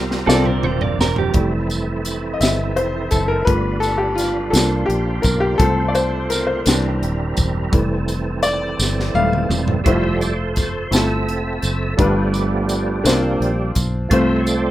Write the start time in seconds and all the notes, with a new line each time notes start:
Already playing: C2 C3 G3 C4 F4 G4 A#4 F5
0.11 snare
0.26 C2 C3 F3 C4 D4 F4 A4 A#4 D5, snare, tambourine
0.45 A#4, mid tom
0.63 D#1 C5, mid tom
0.81 D5, floor tom
0.99 E1 A#4, snare, tambourine
1.16 G4, floor tom
1.33 F1 E3 G3 A3 C4 E4 A4, kick, closed hi-hat
1.70 closed hi-hat, tambourine
2.05 closed hi-hat, tambourine
2.33 D#5
2.41 G1 E5, snare, closed hi-hat, tambourine
2.76 F1 C5, closed hi-hat
3.11 F#1 A4, kick, closed hi-hat, tambourine
3.28 A#4
3.45 G1 F3 G3 A3 B3 D4 F4 B4, kick, closed hi-hat
3.80 A4, closed hi-hat, tambourine
3.98 G4
4.15 F4, closed hi-hat, tambourine
4.21 snare
4.50 C2 F3 A#3 D4 F4 A4 C5, closed hi-hat
4.55 snare, tambourine
4.86 A#1 G4
4.90 closed hi-hat
5.22 B1 A#4, kick, closed hi-hat, tambourine
5.40 G4
5.58 C2 F3 A3 C4 F4 A4 C5, kick, closed hi-hat
5.88 D5
5.95 C5, closed hi-hat, tambourine
6.30 A#4, snare, closed hi-hat, tambourine
6.47 C5
6.66 C2 E3 G3 A#3 C4 D4 E4 A#4, snare, closed hi-hat, tambourine
7.02 D#1, closed hi-hat
7.37 E1, kick, closed hi-hat, tambourine
7.71 F1 E3 G3 A3 C4 A4, kick, closed hi-hat
8.08 closed hi-hat, tambourine
8.43 D5, closed hi-hat, tambourine
8.79 G1, snare, tambourine
9.00 snare
9.14 D#1 G3 A3 E5 F5, high tom
9.33 mid tom
9.50 E1, mid tom, tambourine
9.68 floor tom
9.84 F1 F3 G3 A3 E4 F4 A4 C5 E5, kick, closed hi-hat
10.21 D5, closed hi-hat, tambourine
10.53 C5, kick, closed hi-hat
10.57 snare, tambourine
10.91 G1 A3 C4 E4 F4 A4 E5, snare, closed hi-hat, tambourine
11.28 F1, closed hi-hat
11.62 F#1, closed hi-hat, tambourine
11.97 G1 G2 F3 G3 A3 B3 D4 F4 G4 B4, kick, closed hi-hat
12.34 closed hi-hat, tambourine
12.69 closed hi-hat, tambourine
13.04 C2 F3 A#3 C4 D4 E4 C5, closed hi-hat, tambourine
13.08 F4, snare
13.40 A#1, closed hi-hat
13.75 B1, kick, closed hi-hat, tambourine
14.09 C2 C3 F3 A3 C4 F4 A4 C5 E5, kick, closed hi-hat
14.13 C5
14.38 C#5
14.46 D5, closed hi-hat, tambourine